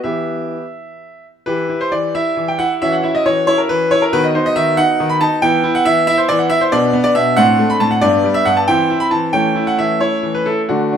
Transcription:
0.04 E3 B3 G4 E5
1.46 E3 E4 G4 B4
1.69 E4
1.81 C5
1.92 E3 D5
2.15 E4 E5
2.37 E3
2.48 G5
2.59 E4 F#5
2.82 E3 C#4 F#4 E5
2.92 F#5
3.03 E4 E5
3.15 D#5
3.26 E3 C#5
3.47 E4 C#5
3.58 A#4
3.69 E3 B4
3.91 E4 C#5
4.02 A#4
4.13 D#3 B3 F#4 B4
4.24 D#5
4.35 D#4 C5
4.46 D#5
4.56 D#3 E5
4.77 D#4 F#5
5.00 D#3
5.09 B5
5.21 D#4 A5
5.42 E3 B3 E4 G5
5.64 E4
5.75 F#5
5.85 E3 E5
6.07 E4 E5
6.17 C5
6.29 E3 D5
6.39 F#5
6.50 E4 E5
6.61 C5
6.72 B2 B3 D4 D5
6.93 B3
7.04 D5
7.15 B2 E5
7.37 A2 C4 D4 F#5
7.59 A3
7.70 B5
7.80 A2 A5
7.91 F#5
8.01 G2 B3 D4 D5
8.24 G3
8.34 E5
8.45 G2 F#5
8.57 A5
8.68 E3 C4 E4 G5
8.90 E4
9.00 B5
9.11 E3 A5
9.33 E3 A3 C#4 G5
9.55 E4
9.67 F#5
9.79 E3 E5
10.00 E4 C#5
10.23 E3
10.35 B4
10.46 E4 A4
10.69 D3 A3 D4 F#4
10.93 D4

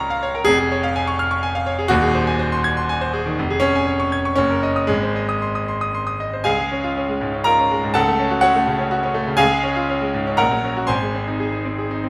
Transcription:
Already playing: C#2 F4 A#4 C#5 F5 A#5 C#6 F6
0.10 F5
0.23 C#5
0.35 A#4
0.45 F1 F2 G#4
0.59 G#4
0.71 C#5
0.83 F5
0.96 G#5
1.07 C#6
1.19 F6
1.31 C#6
1.43 G#5
1.55 F5
1.66 C#5
1.79 G#4
1.88 D#1 D#2 F#4
2.02 G#4
2.15 C5
2.27 G#5
2.39 C5
2.52 C6
2.64 G#6
2.77 C6
2.89 G#5
3.01 C5
3.13 G#4
3.26 D#3
3.39 F1
3.51 G#4
3.60 C#4 C#5
3.75 G#5
3.87 C#5
4.00 C#6
4.12 G#6
4.25 C#6
4.36 F#1 C#4
4.50 A#4
4.63 D#5
4.76 D#6
4.87 G#1 G#3
5.03 C5
5.16 D#5
5.29 D#6
5.42 C6
5.55 D#6
5.68 C6
5.81 D#6
5.95 C6
6.07 D#6
6.20 D#5
6.33 C5
6.44 C#2 G#4 F5 G#5
6.59 G#3
6.71 C#4
6.84 F4
6.96 C#4
7.09 G#3
7.21 G#2
7.34 C#4
7.44 F4 A#4 A#5
7.59 C#4
7.71 G#3
7.84 G#2
7.94 C#2 A4 F#5 A5
8.08 A3
8.19 C#4
8.31 F#4
8.41 C#4 F#4 C#5 F#5
8.55 A3
8.67 C#3
8.79 C#4
8.91 F#4
9.03 C#4
9.14 A3
9.27 C#3
9.37 C#2 G#4 F5 G#5
9.52 G#3
9.63 C#4
9.76 F4
9.89 C#4
10.01 G#3
10.14 G#2
10.27 C#4
10.37 A#1 A#4 F#5 A#5
10.51 F#3
10.64 C#4
10.77 F#4
10.87 G#1 C5 G#5 C6
11.02 G#3
11.14 C4
11.28 D#4
11.40 G#4
11.53 D#4
11.65 C4
11.79 G#4
11.91 D#4
12.04 C4

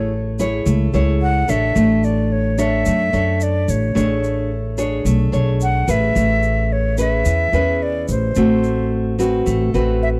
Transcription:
Already playing: A1 A3 E4 G#4 C#5
0.39 E4 G#4 C#5, shaker
0.66 C#2 A3, shaker
0.94 C#2 E4 G#4 C#5, shaker
1.22 F#5
1.48 A1 D4 A4 C#5 E5, shaker
1.75 A1 A3, shaker
2.03 D5, shaker
2.32 C#5
2.58 D4 A4 C#5 E5, shaker
2.86 F#2 A3, shaker
3.13 F#2 D4 A4 C#5, shaker
3.41 D5, shaker
3.68 A1 C#5, shaker
3.95 A1 A3 D4 G#4 C#5, shaker
4.24 shaker
4.78 D4 G#4 C#5, shaker
5.05 B1 A3, shaker
5.32 B1 D4 G#4 C#5, shaker
5.61 F#5, shaker
5.88 A1 C#4 G#4 B4 E5, shaker
6.15 A1 A3, shaker
6.43 shaker
6.72 C#5
6.98 C#4 G#4 B4 E5, shaker
7.25 E2 E3, shaker
7.53 E2 C#4 G#4 B4, shaker
7.83 D5
8.08 A1 C5, shaker
8.35 A1 A3 C4 F#4, shaker
8.64 shaker
9.19 C4 F#4 B4, shaker
9.46 A1 A3, shaker
9.74 A1 C4 F#4 B4, shaker
10.03 E5

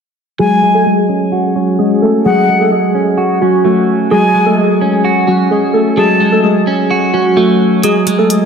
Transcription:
0.39 F#3 G#3 G#4 G#5
0.63 G#3
0.75 A3 A4
0.86 G#3 G#4
1.09 C#4
1.32 F#4
1.56 F#3 C#4 F#4
1.79 G#3 G#4
2.02 A3 A4
2.25 F#3 G#3 G#4 F#5
2.49 G#3
2.60 A3 A4
2.72 G#3 G#4
2.95 C#4
3.18 F#4
3.41 F#3 C#4 F#4
3.65 F#3 A3 F#4
4.11 F#3 G#3 G#4 G#5
4.35 G#3
4.46 A3 A4
4.58 G#3 G#4
4.81 C#4
5.05 F#4
5.27 F#3 C#4 F#4
5.51 G#3 G#4
5.74 A3 A4
5.97 F#3 G#3 G#4 A5
6.20 G#3
6.32 A3 A4
6.44 G#3 G#4
6.67 C#4
6.91 F#4
7.14 F#3 C#4 F#4
7.37 F#3 A3 F#4
7.83 F#3 G#3 G#4, closed hi-hat
8.07 G#3, closed hi-hat
8.19 A3 A4
8.30 G#3 G#4, closed hi-hat

